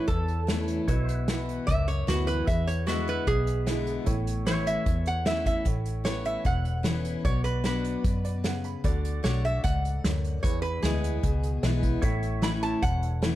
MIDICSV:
0, 0, Header, 1, 7, 480
1, 0, Start_track
1, 0, Key_signature, 3, "major"
1, 0, Tempo, 398142
1, 1066, Time_signature, 4, 2, 24, 8
1, 16098, End_track
2, 0, Start_track
2, 0, Title_t, "Pedal steel guitar"
2, 0, Program_c, 0, 26
2, 0, Note_on_c, 0, 73, 74
2, 0, Note_on_c, 0, 76, 73
2, 1041, Note_off_c, 0, 73, 0
2, 1048, Note_off_c, 0, 76, 0
2, 1057, Note_on_c, 0, 73, 70
2, 1073, Note_on_c, 0, 76, 71
2, 1359, Note_off_c, 0, 73, 0
2, 1359, Note_on_c, 0, 71, 70
2, 2962, Note_off_c, 0, 71, 0
2, 2970, Note_off_c, 0, 76, 0
2, 3477, Note_on_c, 0, 71, 62
2, 3490, Note_on_c, 0, 76, 65
2, 4895, Note_off_c, 0, 71, 0
2, 4902, Note_off_c, 0, 76, 0
2, 5385, Note_on_c, 0, 73, 63
2, 5399, Note_on_c, 0, 76, 66
2, 6809, Note_off_c, 0, 73, 0
2, 6816, Note_off_c, 0, 76, 0
2, 14490, Note_on_c, 0, 73, 78
2, 14509, Note_on_c, 0, 76, 76
2, 16098, Note_off_c, 0, 73, 0
2, 16098, Note_off_c, 0, 76, 0
2, 16098, End_track
3, 0, Start_track
3, 0, Title_t, "Resonator guitar played with a steel bar"
3, 0, Program_c, 1, 25
3, 91, Note_on_c, 1, 69, 106
3, 1030, Note_off_c, 1, 69, 0
3, 2010, Note_on_c, 1, 76, 104
3, 2251, Note_off_c, 1, 76, 0
3, 2264, Note_on_c, 1, 73, 87
3, 2497, Note_off_c, 1, 73, 0
3, 2510, Note_on_c, 1, 66, 96
3, 2738, Note_on_c, 1, 71, 101
3, 2740, Note_off_c, 1, 66, 0
3, 2974, Note_off_c, 1, 71, 0
3, 2982, Note_on_c, 1, 76, 99
3, 3216, Note_off_c, 1, 76, 0
3, 3224, Note_on_c, 1, 73, 97
3, 3457, Note_off_c, 1, 73, 0
3, 3458, Note_on_c, 1, 66, 85
3, 3694, Note_off_c, 1, 66, 0
3, 3723, Note_on_c, 1, 71, 103
3, 3946, Note_off_c, 1, 71, 0
3, 3948, Note_on_c, 1, 68, 104
3, 4877, Note_off_c, 1, 68, 0
3, 5383, Note_on_c, 1, 73, 89
3, 5616, Note_off_c, 1, 73, 0
3, 5630, Note_on_c, 1, 76, 101
3, 6092, Note_off_c, 1, 76, 0
3, 6118, Note_on_c, 1, 78, 91
3, 6343, Note_off_c, 1, 78, 0
3, 6347, Note_on_c, 1, 76, 100
3, 6574, Note_off_c, 1, 76, 0
3, 6589, Note_on_c, 1, 76, 100
3, 6818, Note_off_c, 1, 76, 0
3, 7290, Note_on_c, 1, 73, 84
3, 7529, Note_off_c, 1, 73, 0
3, 7542, Note_on_c, 1, 76, 87
3, 7775, Note_off_c, 1, 76, 0
3, 7789, Note_on_c, 1, 78, 88
3, 8717, Note_off_c, 1, 78, 0
3, 8737, Note_on_c, 1, 73, 97
3, 8966, Note_off_c, 1, 73, 0
3, 8971, Note_on_c, 1, 71, 89
3, 9209, Note_off_c, 1, 71, 0
3, 9226, Note_on_c, 1, 71, 88
3, 10622, Note_off_c, 1, 71, 0
3, 11137, Note_on_c, 1, 73, 91
3, 11373, Note_off_c, 1, 73, 0
3, 11390, Note_on_c, 1, 76, 102
3, 11613, Note_off_c, 1, 76, 0
3, 11618, Note_on_c, 1, 78, 119
3, 12553, Note_off_c, 1, 78, 0
3, 12571, Note_on_c, 1, 73, 92
3, 12797, Note_off_c, 1, 73, 0
3, 12801, Note_on_c, 1, 71, 94
3, 13046, Note_off_c, 1, 71, 0
3, 13051, Note_on_c, 1, 68, 88
3, 14456, Note_off_c, 1, 68, 0
3, 14986, Note_on_c, 1, 83, 91
3, 15219, Note_off_c, 1, 83, 0
3, 15223, Note_on_c, 1, 81, 96
3, 15459, Note_off_c, 1, 81, 0
3, 15461, Note_on_c, 1, 78, 108
3, 16098, Note_off_c, 1, 78, 0
3, 16098, End_track
4, 0, Start_track
4, 0, Title_t, "Upright piano"
4, 0, Program_c, 2, 0
4, 0, Note_on_c, 2, 64, 57
4, 0, Note_on_c, 2, 69, 52
4, 0, Note_on_c, 2, 73, 67
4, 1022, Note_off_c, 2, 64, 0
4, 1029, Note_off_c, 2, 69, 0
4, 1030, Note_off_c, 2, 73, 0
4, 1058, Note_on_c, 2, 66, 58
4, 1062, Note_on_c, 2, 64, 68
4, 1068, Note_on_c, 2, 71, 74
4, 2943, Note_off_c, 2, 66, 0
4, 2945, Note_off_c, 2, 64, 0
4, 2948, Note_off_c, 2, 71, 0
4, 2980, Note_on_c, 2, 64, 59
4, 2984, Note_on_c, 2, 68, 58
4, 2994, Note_on_c, 2, 71, 67
4, 4863, Note_off_c, 2, 64, 0
4, 4864, Note_off_c, 2, 68, 0
4, 4869, Note_off_c, 2, 71, 0
4, 4893, Note_on_c, 2, 64, 71
4, 4895, Note_on_c, 2, 69, 65
4, 4897, Note_on_c, 2, 73, 79
4, 6778, Note_off_c, 2, 64, 0
4, 6780, Note_off_c, 2, 69, 0
4, 6781, Note_off_c, 2, 73, 0
4, 6823, Note_on_c, 2, 64, 58
4, 6827, Note_on_c, 2, 69, 51
4, 6835, Note_on_c, 2, 73, 63
4, 8704, Note_off_c, 2, 64, 0
4, 8706, Note_off_c, 2, 69, 0
4, 8710, Note_off_c, 2, 73, 0
4, 8729, Note_on_c, 2, 66, 58
4, 8737, Note_on_c, 2, 71, 55
4, 8741, Note_on_c, 2, 74, 72
4, 9924, Note_off_c, 2, 74, 0
4, 9942, Note_on_c, 2, 74, 70
4, 10166, Note_off_c, 2, 74, 0
4, 10186, Note_on_c, 2, 78, 73
4, 10408, Note_off_c, 2, 78, 0
4, 10423, Note_on_c, 2, 83, 65
4, 10618, Note_off_c, 2, 66, 0
4, 10622, Note_off_c, 2, 71, 0
4, 10647, Note_off_c, 2, 83, 0
4, 10659, Note_on_c, 2, 66, 76
4, 10661, Note_on_c, 2, 69, 67
4, 10668, Note_on_c, 2, 74, 90
4, 12544, Note_off_c, 2, 66, 0
4, 12546, Note_off_c, 2, 69, 0
4, 12549, Note_off_c, 2, 74, 0
4, 12579, Note_on_c, 2, 64, 62
4, 12582, Note_on_c, 2, 68, 60
4, 12586, Note_on_c, 2, 71, 73
4, 14466, Note_off_c, 2, 64, 0
4, 14467, Note_off_c, 2, 68, 0
4, 14469, Note_off_c, 2, 71, 0
4, 14485, Note_on_c, 2, 64, 78
4, 14493, Note_on_c, 2, 69, 69
4, 14496, Note_on_c, 2, 73, 84
4, 16098, Note_off_c, 2, 64, 0
4, 16098, Note_off_c, 2, 69, 0
4, 16098, Note_off_c, 2, 73, 0
4, 16098, End_track
5, 0, Start_track
5, 0, Title_t, "Steel-string acoustic guitar"
5, 0, Program_c, 3, 25
5, 107, Note_on_c, 3, 40, 91
5, 568, Note_on_c, 3, 52, 86
5, 580, Note_on_c, 3, 57, 81
5, 592, Note_on_c, 3, 61, 83
5, 596, Note_on_c, 3, 64, 89
5, 1019, Note_off_c, 3, 40, 0
5, 1033, Note_off_c, 3, 52, 0
5, 1039, Note_off_c, 3, 57, 0
5, 1045, Note_off_c, 3, 61, 0
5, 1047, Note_off_c, 3, 64, 0
5, 1068, Note_on_c, 3, 47, 79
5, 1540, Note_on_c, 3, 52, 83
5, 1554, Note_on_c, 3, 59, 83
5, 1560, Note_on_c, 3, 64, 88
5, 1566, Note_on_c, 3, 66, 89
5, 1979, Note_off_c, 3, 47, 0
5, 1999, Note_off_c, 3, 52, 0
5, 2006, Note_off_c, 3, 59, 0
5, 2009, Note_off_c, 3, 64, 0
5, 2012, Note_off_c, 3, 66, 0
5, 2028, Note_on_c, 3, 42, 86
5, 2497, Note_on_c, 3, 52, 89
5, 2509, Note_on_c, 3, 59, 92
5, 2515, Note_on_c, 3, 64, 93
5, 2525, Note_on_c, 3, 66, 100
5, 2938, Note_off_c, 3, 42, 0
5, 2957, Note_off_c, 3, 52, 0
5, 2963, Note_off_c, 3, 59, 0
5, 2966, Note_off_c, 3, 64, 0
5, 2971, Note_off_c, 3, 66, 0
5, 2988, Note_on_c, 3, 40, 88
5, 3453, Note_on_c, 3, 50, 83
5, 3470, Note_on_c, 3, 56, 82
5, 3474, Note_on_c, 3, 59, 95
5, 3485, Note_on_c, 3, 64, 90
5, 3898, Note_off_c, 3, 40, 0
5, 3915, Note_off_c, 3, 50, 0
5, 3923, Note_off_c, 3, 56, 0
5, 3925, Note_off_c, 3, 59, 0
5, 3930, Note_off_c, 3, 64, 0
5, 3951, Note_on_c, 3, 47, 90
5, 4418, Note_on_c, 3, 50, 91
5, 4429, Note_on_c, 3, 56, 89
5, 4434, Note_on_c, 3, 59, 92
5, 4440, Note_on_c, 3, 64, 103
5, 4859, Note_off_c, 3, 47, 0
5, 4877, Note_off_c, 3, 50, 0
5, 4882, Note_off_c, 3, 56, 0
5, 4885, Note_off_c, 3, 59, 0
5, 4887, Note_off_c, 3, 64, 0
5, 4903, Note_on_c, 3, 45, 87
5, 5379, Note_on_c, 3, 52, 82
5, 5390, Note_on_c, 3, 57, 70
5, 5400, Note_on_c, 3, 61, 89
5, 5407, Note_on_c, 3, 64, 90
5, 5815, Note_off_c, 3, 45, 0
5, 5837, Note_off_c, 3, 52, 0
5, 5842, Note_off_c, 3, 57, 0
5, 5847, Note_off_c, 3, 61, 0
5, 5851, Note_off_c, 3, 64, 0
5, 5861, Note_on_c, 3, 40, 84
5, 6333, Note_on_c, 3, 52, 83
5, 6342, Note_on_c, 3, 57, 86
5, 6352, Note_on_c, 3, 61, 84
5, 6364, Note_on_c, 3, 64, 87
5, 6773, Note_off_c, 3, 40, 0
5, 6794, Note_off_c, 3, 52, 0
5, 6798, Note_off_c, 3, 57, 0
5, 6803, Note_off_c, 3, 61, 0
5, 6809, Note_off_c, 3, 64, 0
5, 6813, Note_on_c, 3, 45, 80
5, 7280, Note_on_c, 3, 52, 72
5, 7292, Note_on_c, 3, 59, 90
5, 7295, Note_on_c, 3, 61, 90
5, 7308, Note_on_c, 3, 64, 92
5, 7729, Note_off_c, 3, 45, 0
5, 7747, Note_off_c, 3, 52, 0
5, 7753, Note_off_c, 3, 59, 0
5, 7755, Note_off_c, 3, 61, 0
5, 7761, Note_off_c, 3, 64, 0
5, 7771, Note_on_c, 3, 40, 82
5, 8236, Note_on_c, 3, 52, 90
5, 8252, Note_on_c, 3, 59, 89
5, 8258, Note_on_c, 3, 61, 91
5, 8267, Note_on_c, 3, 64, 95
5, 8689, Note_off_c, 3, 40, 0
5, 8705, Note_off_c, 3, 52, 0
5, 8713, Note_off_c, 3, 59, 0
5, 8716, Note_off_c, 3, 61, 0
5, 8720, Note_off_c, 3, 64, 0
5, 8740, Note_on_c, 3, 47, 89
5, 9207, Note_on_c, 3, 54, 94
5, 9226, Note_on_c, 3, 59, 89
5, 9231, Note_on_c, 3, 62, 81
5, 9236, Note_on_c, 3, 66, 78
5, 9654, Note_off_c, 3, 47, 0
5, 9671, Note_off_c, 3, 54, 0
5, 9680, Note_off_c, 3, 59, 0
5, 9683, Note_off_c, 3, 62, 0
5, 9685, Note_off_c, 3, 66, 0
5, 9712, Note_on_c, 3, 47, 79
5, 10164, Note_off_c, 3, 47, 0
5, 10173, Note_on_c, 3, 49, 80
5, 10634, Note_off_c, 3, 49, 0
5, 10656, Note_on_c, 3, 50, 83
5, 11109, Note_off_c, 3, 50, 0
5, 11124, Note_on_c, 3, 50, 78
5, 11135, Note_on_c, 3, 57, 88
5, 11146, Note_on_c, 3, 62, 90
5, 11154, Note_on_c, 3, 66, 78
5, 11365, Note_off_c, 3, 50, 0
5, 11369, Note_off_c, 3, 66, 0
5, 11370, Note_off_c, 3, 57, 0
5, 11375, Note_off_c, 3, 62, 0
5, 11384, Note_on_c, 3, 66, 58
5, 11408, Note_on_c, 3, 62, 49
5, 11615, Note_off_c, 3, 66, 0
5, 11625, Note_on_c, 3, 44, 89
5, 11626, Note_off_c, 3, 62, 0
5, 12081, Note_off_c, 3, 44, 0
5, 12116, Note_on_c, 3, 42, 89
5, 12567, Note_off_c, 3, 42, 0
5, 12596, Note_on_c, 3, 40, 86
5, 13069, Note_on_c, 3, 52, 74
5, 13079, Note_on_c, 3, 56, 75
5, 13089, Note_on_c, 3, 59, 81
5, 13096, Note_on_c, 3, 64, 93
5, 13503, Note_off_c, 3, 40, 0
5, 13524, Note_off_c, 3, 52, 0
5, 13529, Note_off_c, 3, 56, 0
5, 13534, Note_off_c, 3, 59, 0
5, 13537, Note_off_c, 3, 64, 0
5, 13542, Note_on_c, 3, 47, 86
5, 14020, Note_on_c, 3, 52, 92
5, 14029, Note_on_c, 3, 56, 90
5, 14041, Note_on_c, 3, 59, 89
5, 14045, Note_on_c, 3, 64, 103
5, 14457, Note_off_c, 3, 47, 0
5, 14480, Note_off_c, 3, 52, 0
5, 14484, Note_off_c, 3, 56, 0
5, 14490, Note_off_c, 3, 59, 0
5, 14492, Note_off_c, 3, 64, 0
5, 14503, Note_on_c, 3, 45, 86
5, 14970, Note_on_c, 3, 52, 85
5, 14985, Note_on_c, 3, 57, 84
5, 14992, Note_on_c, 3, 61, 89
5, 14996, Note_on_c, 3, 64, 97
5, 15418, Note_off_c, 3, 45, 0
5, 15435, Note_off_c, 3, 52, 0
5, 15443, Note_off_c, 3, 57, 0
5, 15446, Note_off_c, 3, 61, 0
5, 15448, Note_off_c, 3, 64, 0
5, 15465, Note_on_c, 3, 40, 83
5, 15937, Note_on_c, 3, 52, 94
5, 15949, Note_on_c, 3, 57, 94
5, 15956, Note_on_c, 3, 61, 89
5, 15967, Note_on_c, 3, 64, 96
5, 16098, Note_off_c, 3, 40, 0
5, 16098, Note_off_c, 3, 52, 0
5, 16098, Note_off_c, 3, 57, 0
5, 16098, Note_off_c, 3, 61, 0
5, 16098, Note_off_c, 3, 64, 0
5, 16098, End_track
6, 0, Start_track
6, 0, Title_t, "Fingered electric bass"
6, 0, Program_c, 4, 33
6, 101, Note_on_c, 4, 40, 80
6, 949, Note_off_c, 4, 40, 0
6, 1060, Note_on_c, 4, 35, 79
6, 1908, Note_off_c, 4, 35, 0
6, 2026, Note_on_c, 4, 37, 88
6, 2434, Note_off_c, 4, 37, 0
6, 2501, Note_on_c, 4, 38, 82
6, 2911, Note_off_c, 4, 38, 0
6, 2987, Note_on_c, 4, 40, 77
6, 3831, Note_off_c, 4, 40, 0
6, 3942, Note_on_c, 4, 35, 79
6, 4788, Note_off_c, 4, 35, 0
6, 4899, Note_on_c, 4, 33, 81
6, 5746, Note_off_c, 4, 33, 0
6, 5861, Note_on_c, 4, 40, 80
6, 6707, Note_off_c, 4, 40, 0
6, 6817, Note_on_c, 4, 33, 78
6, 7665, Note_off_c, 4, 33, 0
6, 7778, Note_on_c, 4, 28, 80
6, 8626, Note_off_c, 4, 28, 0
6, 8734, Note_on_c, 4, 35, 80
6, 9584, Note_off_c, 4, 35, 0
6, 9699, Note_on_c, 4, 42, 80
6, 10547, Note_off_c, 4, 42, 0
6, 10661, Note_on_c, 4, 38, 82
6, 11085, Note_off_c, 4, 38, 0
6, 11138, Note_on_c, 4, 35, 86
6, 11549, Note_off_c, 4, 35, 0
6, 11627, Note_on_c, 4, 37, 81
6, 12034, Note_off_c, 4, 37, 0
6, 12105, Note_on_c, 4, 38, 89
6, 12514, Note_off_c, 4, 38, 0
6, 12585, Note_on_c, 4, 40, 85
6, 13008, Note_off_c, 4, 40, 0
6, 13058, Note_on_c, 4, 38, 82
6, 13470, Note_off_c, 4, 38, 0
6, 13545, Note_on_c, 4, 37, 81
6, 13954, Note_off_c, 4, 37, 0
6, 14019, Note_on_c, 4, 35, 85
6, 14431, Note_off_c, 4, 35, 0
6, 14496, Note_on_c, 4, 33, 85
6, 15347, Note_off_c, 4, 33, 0
6, 15459, Note_on_c, 4, 28, 84
6, 16098, Note_off_c, 4, 28, 0
6, 16098, End_track
7, 0, Start_track
7, 0, Title_t, "Drums"
7, 98, Note_on_c, 9, 42, 68
7, 101, Note_on_c, 9, 36, 97
7, 219, Note_off_c, 9, 42, 0
7, 221, Note_off_c, 9, 36, 0
7, 340, Note_on_c, 9, 42, 57
7, 460, Note_off_c, 9, 42, 0
7, 584, Note_on_c, 9, 38, 104
7, 584, Note_on_c, 9, 42, 78
7, 705, Note_off_c, 9, 38, 0
7, 705, Note_off_c, 9, 42, 0
7, 816, Note_on_c, 9, 42, 62
7, 937, Note_off_c, 9, 42, 0
7, 1062, Note_on_c, 9, 42, 78
7, 1063, Note_on_c, 9, 36, 97
7, 1182, Note_off_c, 9, 42, 0
7, 1183, Note_off_c, 9, 36, 0
7, 1308, Note_on_c, 9, 42, 62
7, 1429, Note_off_c, 9, 42, 0
7, 1543, Note_on_c, 9, 38, 103
7, 1543, Note_on_c, 9, 42, 84
7, 1663, Note_off_c, 9, 38, 0
7, 1663, Note_off_c, 9, 42, 0
7, 1794, Note_on_c, 9, 42, 60
7, 1914, Note_off_c, 9, 42, 0
7, 2026, Note_on_c, 9, 36, 93
7, 2028, Note_on_c, 9, 42, 82
7, 2147, Note_off_c, 9, 36, 0
7, 2149, Note_off_c, 9, 42, 0
7, 2270, Note_on_c, 9, 42, 67
7, 2391, Note_off_c, 9, 42, 0
7, 2512, Note_on_c, 9, 38, 113
7, 2512, Note_on_c, 9, 42, 81
7, 2632, Note_off_c, 9, 38, 0
7, 2632, Note_off_c, 9, 42, 0
7, 2746, Note_on_c, 9, 42, 60
7, 2867, Note_off_c, 9, 42, 0
7, 2986, Note_on_c, 9, 36, 103
7, 2987, Note_on_c, 9, 42, 84
7, 3107, Note_off_c, 9, 36, 0
7, 3108, Note_off_c, 9, 42, 0
7, 3232, Note_on_c, 9, 42, 60
7, 3353, Note_off_c, 9, 42, 0
7, 3468, Note_on_c, 9, 38, 96
7, 3468, Note_on_c, 9, 42, 76
7, 3588, Note_off_c, 9, 38, 0
7, 3588, Note_off_c, 9, 42, 0
7, 3707, Note_on_c, 9, 42, 55
7, 3827, Note_off_c, 9, 42, 0
7, 3942, Note_on_c, 9, 42, 76
7, 3945, Note_on_c, 9, 36, 100
7, 4063, Note_off_c, 9, 42, 0
7, 4066, Note_off_c, 9, 36, 0
7, 4184, Note_on_c, 9, 42, 58
7, 4305, Note_off_c, 9, 42, 0
7, 4425, Note_on_c, 9, 38, 103
7, 4425, Note_on_c, 9, 42, 79
7, 4545, Note_off_c, 9, 38, 0
7, 4545, Note_off_c, 9, 42, 0
7, 4662, Note_on_c, 9, 42, 62
7, 4783, Note_off_c, 9, 42, 0
7, 4898, Note_on_c, 9, 42, 81
7, 4905, Note_on_c, 9, 36, 96
7, 5018, Note_off_c, 9, 42, 0
7, 5025, Note_off_c, 9, 36, 0
7, 5149, Note_on_c, 9, 42, 62
7, 5269, Note_off_c, 9, 42, 0
7, 5384, Note_on_c, 9, 38, 102
7, 5384, Note_on_c, 9, 42, 81
7, 5504, Note_off_c, 9, 38, 0
7, 5504, Note_off_c, 9, 42, 0
7, 5626, Note_on_c, 9, 42, 61
7, 5747, Note_off_c, 9, 42, 0
7, 5863, Note_on_c, 9, 36, 109
7, 5863, Note_on_c, 9, 42, 77
7, 5984, Note_off_c, 9, 36, 0
7, 5984, Note_off_c, 9, 42, 0
7, 6096, Note_on_c, 9, 42, 69
7, 6216, Note_off_c, 9, 42, 0
7, 6340, Note_on_c, 9, 38, 102
7, 6340, Note_on_c, 9, 42, 82
7, 6460, Note_off_c, 9, 38, 0
7, 6460, Note_off_c, 9, 42, 0
7, 6581, Note_on_c, 9, 36, 84
7, 6582, Note_on_c, 9, 42, 68
7, 6702, Note_off_c, 9, 36, 0
7, 6703, Note_off_c, 9, 42, 0
7, 6817, Note_on_c, 9, 42, 84
7, 6820, Note_on_c, 9, 36, 98
7, 6938, Note_off_c, 9, 42, 0
7, 6940, Note_off_c, 9, 36, 0
7, 7059, Note_on_c, 9, 42, 63
7, 7179, Note_off_c, 9, 42, 0
7, 7294, Note_on_c, 9, 38, 103
7, 7294, Note_on_c, 9, 42, 82
7, 7415, Note_off_c, 9, 38, 0
7, 7415, Note_off_c, 9, 42, 0
7, 7537, Note_on_c, 9, 42, 55
7, 7657, Note_off_c, 9, 42, 0
7, 7773, Note_on_c, 9, 42, 79
7, 7777, Note_on_c, 9, 36, 93
7, 7893, Note_off_c, 9, 42, 0
7, 7898, Note_off_c, 9, 36, 0
7, 8018, Note_on_c, 9, 42, 58
7, 8139, Note_off_c, 9, 42, 0
7, 8249, Note_on_c, 9, 38, 107
7, 8249, Note_on_c, 9, 42, 75
7, 8370, Note_off_c, 9, 38, 0
7, 8370, Note_off_c, 9, 42, 0
7, 8496, Note_on_c, 9, 42, 64
7, 8616, Note_off_c, 9, 42, 0
7, 8738, Note_on_c, 9, 36, 112
7, 8738, Note_on_c, 9, 42, 73
7, 8858, Note_off_c, 9, 36, 0
7, 8859, Note_off_c, 9, 42, 0
7, 8973, Note_on_c, 9, 42, 69
7, 9094, Note_off_c, 9, 42, 0
7, 9211, Note_on_c, 9, 38, 91
7, 9211, Note_on_c, 9, 42, 76
7, 9331, Note_off_c, 9, 38, 0
7, 9331, Note_off_c, 9, 42, 0
7, 9457, Note_on_c, 9, 42, 57
7, 9578, Note_off_c, 9, 42, 0
7, 9698, Note_on_c, 9, 36, 112
7, 9698, Note_on_c, 9, 42, 89
7, 9818, Note_off_c, 9, 42, 0
7, 9819, Note_off_c, 9, 36, 0
7, 9941, Note_on_c, 9, 42, 68
7, 10062, Note_off_c, 9, 42, 0
7, 10179, Note_on_c, 9, 38, 107
7, 10179, Note_on_c, 9, 42, 75
7, 10299, Note_off_c, 9, 38, 0
7, 10299, Note_off_c, 9, 42, 0
7, 10416, Note_on_c, 9, 42, 64
7, 10537, Note_off_c, 9, 42, 0
7, 10662, Note_on_c, 9, 36, 105
7, 10662, Note_on_c, 9, 42, 84
7, 10783, Note_off_c, 9, 36, 0
7, 10783, Note_off_c, 9, 42, 0
7, 10907, Note_on_c, 9, 42, 66
7, 11027, Note_off_c, 9, 42, 0
7, 11145, Note_on_c, 9, 38, 98
7, 11145, Note_on_c, 9, 42, 75
7, 11265, Note_off_c, 9, 38, 0
7, 11265, Note_off_c, 9, 42, 0
7, 11393, Note_on_c, 9, 42, 52
7, 11514, Note_off_c, 9, 42, 0
7, 11626, Note_on_c, 9, 36, 93
7, 11629, Note_on_c, 9, 42, 82
7, 11747, Note_off_c, 9, 36, 0
7, 11749, Note_off_c, 9, 42, 0
7, 11875, Note_on_c, 9, 42, 60
7, 11995, Note_off_c, 9, 42, 0
7, 12110, Note_on_c, 9, 38, 115
7, 12110, Note_on_c, 9, 42, 74
7, 12230, Note_off_c, 9, 38, 0
7, 12230, Note_off_c, 9, 42, 0
7, 12350, Note_on_c, 9, 42, 59
7, 12471, Note_off_c, 9, 42, 0
7, 12587, Note_on_c, 9, 36, 116
7, 12589, Note_on_c, 9, 42, 82
7, 12707, Note_off_c, 9, 36, 0
7, 12709, Note_off_c, 9, 42, 0
7, 12824, Note_on_c, 9, 42, 56
7, 12945, Note_off_c, 9, 42, 0
7, 13063, Note_on_c, 9, 38, 100
7, 13063, Note_on_c, 9, 42, 81
7, 13184, Note_off_c, 9, 38, 0
7, 13184, Note_off_c, 9, 42, 0
7, 13309, Note_on_c, 9, 42, 61
7, 13429, Note_off_c, 9, 42, 0
7, 13544, Note_on_c, 9, 42, 82
7, 13545, Note_on_c, 9, 36, 94
7, 13665, Note_off_c, 9, 42, 0
7, 13666, Note_off_c, 9, 36, 0
7, 13784, Note_on_c, 9, 42, 67
7, 13904, Note_off_c, 9, 42, 0
7, 14022, Note_on_c, 9, 38, 110
7, 14022, Note_on_c, 9, 42, 81
7, 14143, Note_off_c, 9, 38, 0
7, 14143, Note_off_c, 9, 42, 0
7, 14259, Note_on_c, 9, 42, 67
7, 14261, Note_on_c, 9, 36, 76
7, 14380, Note_off_c, 9, 42, 0
7, 14382, Note_off_c, 9, 36, 0
7, 14494, Note_on_c, 9, 42, 91
7, 14499, Note_on_c, 9, 36, 117
7, 14615, Note_off_c, 9, 42, 0
7, 14620, Note_off_c, 9, 36, 0
7, 14739, Note_on_c, 9, 42, 61
7, 14860, Note_off_c, 9, 42, 0
7, 14978, Note_on_c, 9, 38, 110
7, 14978, Note_on_c, 9, 42, 72
7, 15098, Note_off_c, 9, 38, 0
7, 15098, Note_off_c, 9, 42, 0
7, 15224, Note_on_c, 9, 42, 61
7, 15345, Note_off_c, 9, 42, 0
7, 15463, Note_on_c, 9, 36, 97
7, 15464, Note_on_c, 9, 42, 77
7, 15584, Note_off_c, 9, 36, 0
7, 15584, Note_off_c, 9, 42, 0
7, 15704, Note_on_c, 9, 42, 62
7, 15825, Note_off_c, 9, 42, 0
7, 15945, Note_on_c, 9, 38, 108
7, 15945, Note_on_c, 9, 42, 83
7, 16065, Note_off_c, 9, 38, 0
7, 16065, Note_off_c, 9, 42, 0
7, 16098, End_track
0, 0, End_of_file